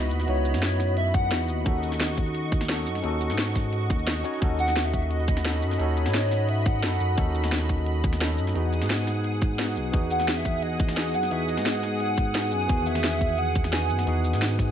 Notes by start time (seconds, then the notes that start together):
Already playing: C#2 B3 D#4 E4 F#4 D#5 B5
0.11 D#2, closed hi-hat, cabasa
0.20 snare
0.26 C#2 B3 D#4 E4 F#4 C#5, closed hi-hat
0.45 closed hi-hat, cabasa
0.54 F#2, snare
0.62 snare, closed hi-hat
0.80 snare, closed hi-hat, cabasa
0.89 closed hi-hat
0.97 E5, closed hi-hat
1.14 F#5, kick, closed hi-hat, cabasa
1.31 E2 B3 D#4 E4 F#4, snare, closed hi-hat
1.49 D#2, closed hi-hat, cabasa
1.64 D#2 C#4 D#4 F#4 A4 D#5 C#6, kick, closed hi-hat
1.83 closed hi-hat, cabasa
1.92 snare
2.00 snare, closed hi-hat
2.18 kick, closed hi-hat, cabasa
2.26 closed hi-hat
2.35 closed hi-hat
2.52 kick, closed hi-hat, cabasa
2.61 snare
2.69 C#4 D#4 F#4 A4, snare, closed hi-hat
2.86 F#2, closed hi-hat, cabasa
2.95 snare
3.02 D#2 C#4 D#4 F#4 A4, closed hi-hat
3.21 closed hi-hat, cabasa
3.30 G#2, snare
3.38 snare, closed hi-hat
3.55 kick, snare, closed hi-hat, cabasa
3.64 closed hi-hat
3.73 closed hi-hat
3.90 D#2, kick, closed hi-hat, cabasa
3.99 cabasa
4.07 snare, closed hi-hat
4.16 closed hi-hat
4.24 C#4 D#4 F#4 C#5, closed hi-hat, cabasa
4.34 closed hi-hat
4.40 D#2 C#4 D#4 F#4 A4, kick, closed hi-hat
4.59 F#5, closed hi-hat, cabasa
4.68 snare
4.76 snare, closed hi-hat
4.85 E5
4.94 kick, closed hi-hat, cabasa
5.02 closed hi-hat
5.11 D#5 B5, closed hi-hat
5.28 kick, closed hi-hat, cabasa
5.37 snare
5.44 C#4 D#4 F#4 A4, snare, closed hi-hat
5.62 F#2, closed hi-hat, cabasa
5.71 snare
5.78 D#2 C#4 D#4 F#4 A4 C#5, closed hi-hat
5.97 closed hi-hat, cabasa
6.06 G#2, snare
6.14 snare, closed hi-hat
6.31 snare, closed hi-hat, cabasa
6.40 closed hi-hat
6.49 E5, closed hi-hat
6.66 F#5, kick, closed hi-hat, cabasa
6.82 F#2 C#4 D#4 F#4 A4, snare, closed hi-hat
7.00 F#2, closed hi-hat, cabasa
7.16 D#2 C#4 D#4 F#4 A4, kick, closed hi-hat
7.35 closed hi-hat, cabasa
7.44 snare
7.52 snare, closed hi-hat
7.69 kick, closed hi-hat, cabasa
7.78 closed hi-hat
7.86 closed hi-hat
8.04 kick, closed hi-hat, cabasa
8.13 snare
8.20 C#4 D#4 F#4 A4, snare, closed hi-hat
8.38 F#2, closed hi-hat, cabasa
8.47 snare
8.54 E2 B3 D#4 F#4 G#4 F#5 D#6, closed hi-hat
8.73 closed hi-hat, cabasa
8.82 G#2, snare
8.90 snare, closed hi-hat
9.07 snare, closed hi-hat, cabasa
9.16 closed hi-hat
9.24 closed hi-hat
9.42 kick, closed hi-hat, cabasa
9.58 B3 D#4 F#4 G#4, snare, closed hi-hat
9.76 B1, closed hi-hat, cabasa
9.92 E2 B3 D#4 F#4 G#4, kick, closed hi-hat
10.11 F#5, closed hi-hat, cabasa
10.20 snare
10.28 snare, closed hi-hat
10.37 E5
10.45 kick, closed hi-hat, cabasa
10.54 closed hi-hat
10.63 D#5, closed hi-hat
10.80 kick, closed hi-hat, cabasa
10.89 snare
10.96 B3 D#4 F#4 G#4, snare, closed hi-hat
11.14 F#2 F#5, closed hi-hat, cabasa
11.23 snare
11.30 E2 B3 D#4 F#4 G#4 E5, closed hi-hat
11.49 D#5, closed hi-hat, cabasa
11.57 G#2, snare
11.66 snare, closed hi-hat
11.83 snare, closed hi-hat, cabasa
11.92 closed hi-hat
12.00 F#5, closed hi-hat
12.18 kick, closed hi-hat, cabasa
12.34 G#2 B3 D#4 F#4 G#4, snare, closed hi-hat
12.52 F#2 G#5, closed hi-hat, cabasa
12.68 E2 D#3 B3 F#4 G#4, kick, closed hi-hat
12.86 E5, closed hi-hat, cabasa
12.95 snare
13.04 snare, closed hi-hat
13.21 kick, closed hi-hat, cabasa
13.30 closed hi-hat
13.38 F#5, closed hi-hat
13.55 kick, closed hi-hat, cabasa
13.64 snare
13.72 B3 D#4 F#4 G#4 G#5, snare, closed hi-hat
13.90 F#2, closed hi-hat, cabasa
13.99 snare
14.05 E2 B3 D#4 F#4 G#4, closed hi-hat
14.24 closed hi-hat, cabasa
14.33 G#2, snare
14.42 snare, closed hi-hat
14.59 kick, snare, closed hi-hat, cabasa
14.68 closed hi-hat